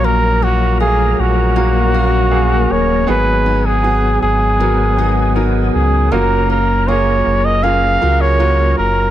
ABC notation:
X:1
M:4/4
L:1/16
Q:1/4=79
K:F#
V:1 name="Trumpet"
A2 F2 G2 F8 c2 | B3 G3 G6- G z G2 | A2 A2 c3 d e3 c3 A2 |]
V:2 name="Upright piano"
[A,Fe]4 [=A,^A,Ge]4 [A,Fe]2 [A,Fe]2 [A,Ge]4 | [B,FG]4 [B,FG]4 [B,FA]2 [B,FG]2 [B,FA]4 | [A,EF]4 [A,EG]4 [A,EG]2 [A,EF]2 [A,EF]4 |]
V:3 name="Upright piano" clef=bass
A,,4 z12 | [G,,D,]6 z8 z2 | C,6 z8 z2 |]
V:4 name="Steel-string acoustic guitar"
A,,2 E2 A4 A,2 [CA]6 | G,,2 D2 G4 F,2 [B,DG]2 D4 | F,2 E2 A4 C2 [CEA]2 E4 |]
V:5 name="Tonewheel organ"
[F,A,A]16 | [F,B,G]16 | [F,A,A]16 |]
V:6 name="Sub bass" clef=bass
A,,,6 A,,,8 D,,,2 | G,,,6 G,,,8 C,,2 | F,,,6 F,,,4 C,,4 F,,,2 |]